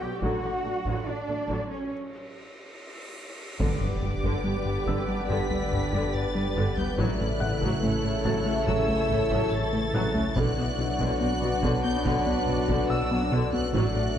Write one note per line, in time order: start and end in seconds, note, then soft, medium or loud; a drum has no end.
0.00 0.09 B1 soft
0.00 1.91 F#3 medium
0.00 0.09 F#3 soft
0.00 0.22 B3 medium
0.00 0.09 B3 soft
0.00 1.87 F#4 medium
0.00 0.22 G4 medium
0.00 1.91 D5 medium
0.00 0.22 G5 medium
0.00 1.87 C#6 soft
0.00 1.44 E6 soft
0.21 0.30 A1 medium
0.21 0.42 D3 medium
0.21 0.42 F#3 medium
0.21 1.90 D4 medium
0.21 1.06 F#4 medium
0.21 1.05 F#5 medium
0.21 taiko medium
0.21 cymbal swell soft
0.42 0.50 A1 soft
0.42 0.51 D3 soft
0.42 0.51 D4 soft
0.64 0.72 A1 soft
0.64 0.73 D3 soft
0.64 0.72 A3 soft
0.85 0.93 A1 medium
0.85 1.05 D3 soft
0.85 1.05 F#3 medium
0.85 taiko medium
1.06 1.14 A1 soft
1.06 1.15 D3 soft
1.06 1.70 D4 medium
1.06 1.14 D4 soft
1.06 1.70 D5 medium
1.28 1.36 A1 soft
1.28 1.36 D3 soft
1.28 1.36 A3 soft
1.48 1.56 A1 medium
1.48 1.69 D3 medium
1.48 1.68 F#3 medium
1.48 taiko medium
1.70 1.91 C#4 medium
1.70 1.91 C#5 soft
3.59 3.68 G1 medium
3.59 7.00 G1 medium
3.59 3.73 G2 medium
3.59 3.68 G2 medium
3.59 6.94 D3 medium
3.59 3.80 D3 medium
3.59 6.94 D3 medium
3.59 6.94 B3 medium
3.59 6.94 D4 medium
3.59 6.94 G4 medium
3.59 6.94 B4 medium
3.59 7.79 B4 medium
3.59 7.79 D5 medium
3.59 5.25 D6 medium
3.59 taiko medium
3.59 impact medium
3.81 3.94 G2 medium
3.81 3.89 G2 soft
3.81 3.90 B3 soft
4.02 4.11 G1 soft
4.02 4.15 G2 medium
4.02 4.10 G2 medium
4.02 4.11 G3 soft
4.23 4.36 G2 medium
4.23 4.32 G2 medium
4.23 4.43 D3 medium
4.23 taiko medium
4.44 4.53 G1 soft
4.44 4.53 G2 medium
4.44 4.57 G3 medium
4.44 4.53 B3 soft
4.65 4.78 G2 medium
4.65 4.74 G2 medium
4.65 4.74 G3 soft
4.87 4.95 G1 medium
4.87 5.00 G2 medium
4.87 4.96 G2 medium
4.87 5.07 D3 medium
4.87 7.37 E6 soft
4.87 taiko medium
5.08 5.21 G3 medium
5.29 5.37 G1 medium
5.29 5.42 G2 medium
5.29 5.38 G2 medium
5.29 5.49 D3 medium
5.29 6.14 B6 medium
5.29 taiko medium
5.50 5.63 G3 medium
5.50 taiko low soft
5.72 5.80 G1 soft
5.72 5.80 G2 soft
5.72 5.85 G2 medium
5.72 5.80 G3 medium
5.72 taiko low medium
5.93 6.01 G2 medium
5.93 6.06 G2 medium
5.93 6.13 D3 medium
5.93 taiko medium
6.14 6.27 G2 medium
6.14 6.77 A6 medium
6.35 6.44 G2 soft
6.35 6.48 G3 medium
6.35 6.44 G3 medium
6.56 6.64 G1 medium
6.56 6.69 G2 medium
6.56 6.65 G2 medium
6.56 6.76 D3 medium
6.77 6.86 G2 soft
6.77 6.90 G3 medium
6.77 6.86 B3 medium
6.77 6.99 G6 medium
6.77 taiko low soft
6.98 10.37 A1 medium
6.98 7.06 A1 medium
6.98 7.11 A2 medium
6.98 7.07 A2 medium
6.98 10.36 C#3 medium
6.98 10.20 C#3 medium
6.98 10.36 E3 medium
6.98 10.32 E3 medium
6.98 7.18 F#3 medium
6.98 10.32 A3 medium
6.98 11.17 E4 medium
6.98 10.36 A4 medium
6.98 10.20 A4 medium
6.98 10.36 E5 medium
6.98 8.64 F#6 medium
6.98 taiko loud
7.20 7.28 A2 soft
7.20 7.33 A2 medium
7.20 7.29 C#4 soft
7.40 7.49 A1 soft
7.40 7.49 A2 medium
7.40 7.54 A2 medium
7.40 7.50 A3 medium
7.40 9.90 F#5 soft
7.40 9.90 F#6 medium
7.62 7.75 A2 medium
7.62 7.70 A2 medium
7.62 7.82 F#3 medium
7.62 taiko medium
7.83 7.91 A1 medium
7.83 7.91 A2 medium
7.83 7.95 A3 medium
7.83 7.92 C#4 soft
7.83 10.37 A4 medium
7.83 10.37 C#5 medium
8.04 8.12 A2 medium
8.04 8.17 A2 medium
8.04 8.12 A3 medium
8.25 8.33 A1 medium
8.25 8.38 A2 medium
8.25 8.33 A2 medium
8.25 8.45 F#3 medium
8.25 10.75 A6 medium
8.25 taiko medium
8.46 8.59 A3 medium
8.67 8.76 A1 medium
8.67 8.80 A2 medium
8.67 8.76 A2 medium
8.67 8.87 F#3 medium
8.67 9.52 E6 medium
8.67 taiko medium
8.88 9.01 A3 medium
8.88 taiko low soft
9.09 9.18 A1 medium
9.09 9.22 A2 medium
9.09 9.18 A2 medium
9.09 9.19 A3 medium
9.09 taiko low medium
9.31 9.43 A2 medium
9.31 9.39 A2 medium
9.31 9.51 F#3 medium
9.31 taiko medium
9.51 9.64 A2 medium
9.51 10.36 A6 loud
9.73 9.81 A2 medium
9.73 9.86 A3 medium
9.73 9.81 A3 medium
9.94 10.02 A1 medium
9.94 10.06 A2 medium
9.94 10.02 A2 medium
9.94 10.14 F#3 medium
9.94 12.44 F#6 soft
10.14 10.23 A2 medium
10.14 10.27 A3 medium
10.14 10.24 C#4 medium
10.14 taiko low soft
10.36 13.76 B1 medium
10.36 10.45 B1 medium
10.36 10.49 B2 loud
10.36 10.44 B2 medium
10.36 10.56 D3 medium
10.36 13.56 F#3 medium
10.36 13.74 F#3 medium
10.36 13.56 B3 medium
10.36 13.73 D4 medium
10.36 13.70 D4 medium
10.36 13.70 F#4 medium
10.36 13.74 F#4 medium
10.36 13.74 B4 medium
10.36 13.73 D5 medium
10.36 13.71 D5 medium
10.36 11.19 F#6 loud
10.36 taiko medium
10.57 10.70 B2 medium
10.57 10.65 B2 medium
10.57 10.66 B3 soft
10.78 10.88 B1 medium
10.78 10.91 B2 medium
10.78 10.87 B2 medium
10.78 10.87 F#3 medium
10.99 11.12 B2 medium
10.99 11.07 B2 medium
10.99 11.19 D3 medium
10.99 taiko medium
11.20 11.29 B1 medium
11.20 11.29 B2 medium
11.20 11.29 B3 medium
11.20 11.33 B3 medium
11.20 13.74 D4 medium
11.20 11.82 F#6 loud
11.42 11.54 B2 medium
11.42 11.50 B2 medium
11.42 11.50 F#3 medium
11.63 11.71 B1 medium
11.63 11.76 B2 medium
11.63 11.71 B2 medium
11.63 11.83 D3 medium
11.63 taiko medium
11.84 11.97 B3 medium
11.84 12.05 G6 medium
12.04 12.14 B1 medium
12.04 12.13 B2 medium
12.04 12.18 B2 loud
12.04 12.25 D3 medium
12.04 12.89 F#6 medium
12.04 taiko medium
12.26 12.39 B3 medium
12.26 taiko low soft
12.47 12.56 B1 medium
12.47 12.56 B2 medium
12.47 12.61 B2 medium
12.47 12.55 F#3 medium
12.47 taiko low medium
12.68 12.76 B2 medium
12.68 12.81 B2 medium
12.68 12.88 D3 medium
12.68 taiko medium
12.89 13.03 B2 medium
12.89 13.51 E6 medium
12.89 14.18 E6 medium
13.11 13.19 B2 medium
13.11 13.19 F#3 medium
13.11 13.24 B3 medium
13.32 13.40 B1 medium
13.32 13.44 B2 medium
13.32 13.40 B2 medium
13.32 13.52 D3 medium
13.53 13.61 B2 medium
13.53 13.66 B3 medium
13.53 13.61 B3 medium
13.53 13.73 F#6 loud
13.53 taiko low soft
13.73 14.18 A1 medium
13.73 13.83 A1 loud
13.73 13.82 A2 medium
13.73 13.87 A2 loud
13.73 14.18 F#3 medium
13.73 13.94 F#3 medium
13.73 14.18 A3 medium
13.73 14.18 D4 loud
13.73 14.18 D4 medium
13.73 13.94 D4 medium
13.73 14.18 F#4 medium
13.73 14.18 A4 loud
13.73 14.18 A4 medium
13.73 14.18 D5 medium
13.73 14.18 F#6 loud
13.73 taiko loud
13.95 14.03 A2 medium
13.95 14.08 A2 medium
13.95 14.04 D4 medium